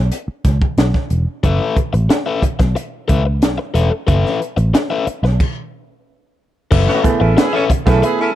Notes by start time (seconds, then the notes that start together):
0.12 closed hi-hat
0.28 muted picked electric bass stroke
0.45 C#2, kick, snare, closed hi-hat
0.62 kick
0.78 B1, snare, closed hi-hat
0.94 kick, snare
1.10 E1, closed hi-hat
1.44 F#1 A4 B4 E5, kick, closed hi-hat
1.76 kick, closed hi-hat
1.93 A1, muted overdriven electric guitar stroke, closed hi-hat
2.10 muted overdriven electric guitar stroke, snare, closed hi-hat
2.26 A4 B4 E5
2.42 muted picked electric bass stroke, muted overdriven electric guitar stroke, kick, closed hi-hat
2.59 B1, muted overdriven electric guitar stroke, kick, snare, closed hi-hat
2.76 muted overdriven electric guitar stroke, closed hi-hat
3.08 C#2 A4 B4 E5, kick, closed hi-hat
3.25 muted overdriven electric guitar stroke
3.42 B1, snare, closed hi-hat
3.58 muted overdriven electric guitar stroke
3.74 E1 A4 B4 E5, snare, closed hi-hat
3.91 muted overdriven electric guitar stroke
4.07 F#1 A4 B4 E5, kick, closed hi-hat
4.26 snare
4.42 closed hi-hat
4.57 A1, muted overdriven electric guitar stroke, closed hi-hat
4.74 muted overdriven electric guitar stroke, snare, closed hi-hat
4.90 A4 B4 E5
5.07 muted overdriven electric guitar stroke, muted picked electric bass stroke, closed hi-hat
5.23 B1, muted overdriven electric guitar stroke, snare
5.40 kick, crash
6.71 F#1 A4 B4 E5, kick, crash
6.88 B3 C#4 F#4, snare
7.03 A3 B3 E4 G#4, kick, closed hi-hat
7.20 A1 C#4 E4 A4, muted overdriven electric guitar stroke
7.37 E4 G#4 B4, muted overdriven electric guitar stroke, snare, closed hi-hat
7.53 C#4 A4 B4 C#5 E5
7.70 muted picked electric bass stroke, muted overdriven electric guitar stroke, kick, closed hi-hat
7.86 B1 A3 B3 C#4 E4 G#4 A4, muted overdriven electric guitar stroke, kick, snare, closed hi-hat
8.03 E4 G#4 B4, muted overdriven electric guitar stroke, closed hi-hat
8.20 C#4 E4 A4